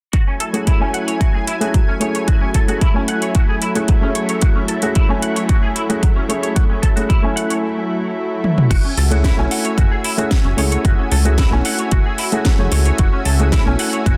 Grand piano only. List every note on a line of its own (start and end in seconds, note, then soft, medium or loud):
0.53 0.77 A3 medium
0.53 0.77 C#4 medium
0.53 0.77 E4 medium
0.53 0.78 G#4 medium
0.79 1.57 A3 medium
0.79 1.58 C#4 medium
0.79 1.58 E4 medium
0.79 1.58 G#5 medium
1.60 1.70 A3 medium
1.60 1.70 C#4 medium
1.60 1.71 E4 medium
1.60 1.71 G#4 medium
2.00 2.65 A3 medium
2.00 2.65 C#4 medium
2.00 2.65 E4 medium
2.00 2.66 G#4 medium
2.68 2.78 A3 medium
2.68 2.78 C#4 medium
2.68 2.78 E4 medium
2.68 2.78 G#4 medium
2.94 3.72 A3 medium
2.94 3.72 C#4 medium
2.94 3.72 E4 medium
2.94 3.73 G#5 medium
3.75 3.99 A3 medium
3.75 3.99 C#4 medium
3.75 3.99 E4 medium
3.75 3.99 G#4 medium
4.01 4.79 A3 medium
4.01 4.79 C#4 medium
4.01 4.79 E4 medium
4.01 4.80 G#4 medium
4.82 5.06 A3 medium
4.82 5.06 C#4 medium
4.82 5.06 E4 medium
4.82 5.06 G#4 medium
5.09 5.86 A3 medium
5.09 5.86 C#4 medium
5.09 5.87 E4 medium
5.09 5.87 G#5 medium
5.89 5.99 A3 medium
5.89 5.99 C#4 medium
5.89 5.99 E4 medium
5.89 6.00 G#4 medium
6.29 6.93 A3 medium
6.29 6.94 C#4 medium
6.29 6.94 E4 medium
6.29 6.94 G#4 medium
6.96 7.06 A3 medium
6.96 7.06 C#4 medium
6.96 7.06 E4 medium
6.96 7.07 G#4 medium
7.22 7.63 A3 medium
7.22 7.63 C#4 medium
7.22 7.64 E4 medium
7.22 7.64 G#5 medium
9.11 9.34 A3 medium
9.11 9.35 C#4 medium
9.11 9.35 E4 medium
9.11 9.35 G#4 medium
9.37 10.15 A3 medium
9.37 10.15 C#4 medium
9.37 10.15 E4 medium
9.37 10.16 G#5 medium
10.17 10.27 A3 medium
10.17 10.28 C#4 medium
10.17 10.28 E4 medium
10.17 10.28 G#4 medium
10.57 11.22 A3 medium
10.57 11.22 C#4 medium
10.57 11.22 E4 medium
10.57 11.22 G#4 medium
11.25 11.35 A3 medium
11.25 11.35 C#4 medium
11.25 11.35 E4 medium
11.25 11.35 G#4 medium
11.50 12.28 A3 medium
11.50 12.29 C#4 medium
11.50 12.29 E4 medium
11.50 12.30 G#5 medium
12.32 12.56 A3 medium
12.32 12.56 C#4 medium
12.32 12.56 E4 medium
12.32 12.56 G#4 medium
12.58 13.36 A3 medium
12.58 13.36 C#4 medium
12.58 13.37 E4 medium
12.58 13.37 G#4 medium
13.39 13.63 A3 medium
13.39 13.63 C#4 medium
13.39 13.63 E4 medium
13.39 13.64 G#4 medium
13.66 14.17 A3 medium
13.66 14.17 C#4 medium
13.66 14.17 E4 medium
13.66 14.17 G#5 medium